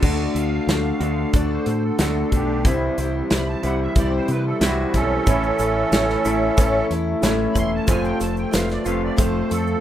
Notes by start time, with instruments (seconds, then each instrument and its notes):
0.02 fingered electric bass D2, twelve-string acoustic guitar D3 A3 D4 F#4 A4, kick, crash
0.34 fingered electric bass D2, twelve-string acoustic guitar F#4 A4, accordion E5 F5, closed hi-hat
0.39 twelve-string acoustic guitar D4
0.67 fingered electric bass D2, twelve-string acoustic guitar A3 D4 F#4 A4, snare, closed hi-hat
1.00 fingered electric bass D2, clean electric guitar D3 A3, twelve-string acoustic guitar D4 F#4 A4, closed hi-hat
1.33 fingered electric bass D2, twelve-string acoustic guitar D3 A3 D4 F#4 A4, accordion D5, kick, closed hi-hat
1.53 accordion C5
1.66 fingered electric bass A2, twelve-string acoustic guitar D4 F#4 A4, closed hi-hat
1.84 accordion A4
1.99 fingered electric bass D2, clean electric guitar D3, twelve-string acoustic guitar A3 D4 F#4 A4, snare, closed hi-hat
2.32 fingered electric bass B1, accordion D4 G4, twelve-string acoustic guitar D4 A4, kick, closed hi-hat
2.65 fingered electric bass C2, twelve-string acoustic guitar C3 E3 G3 C4 E4 C5, kick, closed hi-hat
2.98 fingered electric bass C2, twelve-string acoustic guitar G3 C4 E4 C5, closed hi-hat
3.30 fingered electric bass C2, twelve-string acoustic guitar G3 C4 E4 C5, accordion B5, snare, closed hi-hat
3.49 accordion A5
3.63 fingered electric bass C2, clean electric guitar C3 E3, twelve-string acoustic guitar G3 C4 E4 C5, accordion F#5, closed hi-hat
3.82 accordion E5
3.96 fingered electric bass C2, twelve-string acoustic guitar C3 E3 G3 C4 E4 C5, accordion D5, kick, closed hi-hat
4.15 accordion C5
4.28 fingered electric bass C3, twelve-string acoustic guitar G3 C4 E4 C5, accordion B4, closed hi-hat
4.47 accordion A4
4.61 fingered electric bass C2, clean electric guitar C3 E3, twelve-string acoustic guitar G3 C4 E4, accordion F#4, snare, closed hi-hat
4.66 twelve-string acoustic guitar C5
4.94 fingered electric bass B1, twelve-string acoustic guitar G3 E4 C5, accordion C#4 A4, kick, snare, closed hi-hat
5.26 fingered electric bass A1, twelve-string acoustic guitar A2 E3 A3 C#4 E4 A4, upright piano E4 A4 C#5, kick, closed hi-hat, shaker
5.43 shaker
5.59 fingered electric bass A1, twelve-string acoustic guitar A3 C#4 E4 A4, closed hi-hat, shaker
5.91 fingered electric bass A1, twelve-string acoustic guitar A3 C#4, upright piano E4 A4 C#5, snare, closed hi-hat, shaker
5.95 twelve-string acoustic guitar E4 A4
6.10 snare
6.25 fingered electric bass A1, clean electric guitar A2 E3, twelve-string acoustic guitar C#4 E4 A4, closed hi-hat, shaker
6.29 twelve-string acoustic guitar A3
6.56 fingered electric bass A1, twelve-string acoustic guitar A2 E3 A3 C#4, upright piano E4 A4 C#5, kick, closed hi-hat, shaker
6.61 twelve-string acoustic guitar E4 A4
6.90 fingered electric bass E2, twelve-string acoustic guitar C#4 E4 A4, closed hi-hat
6.95 twelve-string acoustic guitar A3
7.21 fingered electric bass A1, clean electric guitar A2 E3, twelve-string acoustic guitar A3 C#4, upright piano E4 A4 C#5, snare, closed hi-hat, shaker
7.25 twelve-string acoustic guitar E4 A4
7.52 fingered electric bass E1, twelve-string acoustic guitar E4 A4, accordion B5, kick, closed hi-hat, shaker
7.57 twelve-string acoustic guitar A3 C#4, accordion C6
7.75 accordion A5
7.86 fingered electric bass F1, clean electric guitar F2 C3, twelve-string acoustic guitar F3 A3 C4 F4 A4, upright piano F4 A4 C5, accordion G#5, kick, closed hi-hat, shaker
8.05 accordion G5, shaker
8.20 fingered electric bass F1, twelve-string acoustic guitar C4 F4 A4, accordion A5, closed hi-hat, shaker
8.37 accordion G5, shaker
8.51 fingered electric bass F1, twelve-string acoustic guitar A3 C4 F4 A4, upright piano F4 A4 B4, accordion F5, snare, closed hi-hat, shaker
8.69 accordion D5, snare, shaker
8.84 fingered electric bass F1, clean electric guitar C3 F3 A3, twelve-string acoustic guitar C4 F4 A4, accordion F5, closed hi-hat, shaker
8.88 clean electric guitar F2
9.04 accordion D5
9.16 fingered electric bass F1, twelve-string acoustic guitar F3 A3 C4 F4 A4, upright piano F4 A4 C5, accordion C5, kick, closed hi-hat, shaker
9.50 fingered electric bass F2, twelve-string acoustic guitar C4 F4 A4, accordion A4, closed hi-hat, shaker
9.67 shaker